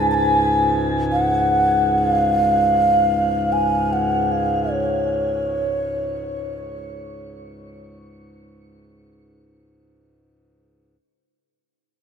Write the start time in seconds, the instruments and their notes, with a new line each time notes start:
Already playing: harmonium C#2 G#2
0.11 xiao G#5 A5
1.12 xiao F#5
1.98 xiao F#5
2.09 xiao F5
3.52 xiao G#5
3.93 xiao F#5
4.32 xiao F5
4.72 xiao C#5